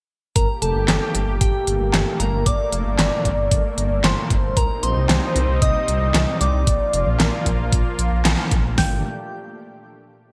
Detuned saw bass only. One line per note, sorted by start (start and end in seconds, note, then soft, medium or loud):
0.36 0.46 G1 loud
0.62 0.73 F1 loud
0.75 0.86 G1 medium
0.88 0.99 G1 loud
1.15 1.25 G1 medium
1.28 1.38 G1 medium
1.41 1.51 G1 loud
1.67 1.78 G1 medium
1.80 1.91 G1 medium
1.94 2.04 G1 loud
2.20 2.30 G1 loud
2.33 2.44 G1 medium
2.46 2.57 G1 loud
2.72 2.83 F1 loud
2.86 2.96 G1 medium
2.99 3.09 G1 loud
3.25 3.36 G1 loud
3.38 3.49 G1 medium
3.51 3.62 G1 loud
3.78 3.88 G1 medium
3.91 4.01 G1 medium
4.04 4.15 G1 loud
4.30 4.41 G1 medium
4.44 4.54 G1 medium
4.57 4.67 C2 loud
4.83 4.94 A#1 loud
4.96 5.07 C2 medium
5.09 5.20 C2 loud
5.36 5.46 C2 loud
5.49 5.59 C2 medium
5.62 5.73 C2 loud
5.88 5.99 C2 medium
6.01 6.12 C2 medium
6.15 6.25 C2 loud
6.41 6.51 C2 loud
6.54 6.65 C2 medium
6.67 6.78 A#1 loud
6.94 7.04 F1 loud
7.07 7.17 A#1 medium
7.20 7.30 A#1 loud
7.46 7.57 A#1 loud
7.59 7.70 A#1 medium
7.73 7.83 A#1 loud
7.99 8.09 A#1 medium
8.12 8.23 A#1 medium
8.25 8.36 A#1 loud
8.52 8.62 A#1 loud
8.65 8.75 A#1 medium
8.78 9.02 G1 loud